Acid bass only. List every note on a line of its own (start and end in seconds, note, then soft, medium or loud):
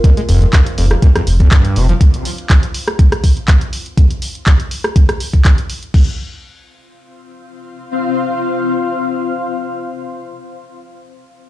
0.04 0.11 A#2 loud
0.17 0.21 G#3 medium
0.29 0.39 F2 medium
0.42 0.46 F2 loud
0.53 0.60 G2 medium
0.78 0.85 F2 medium
0.91 0.95 F2 medium
1.02 1.10 A#2 medium
1.16 1.22 F2 medium
1.40 1.50 F2 medium
1.52 1.78 G2 medium
1.76 1.87 C3 loud
1.89 1.93 F3 medium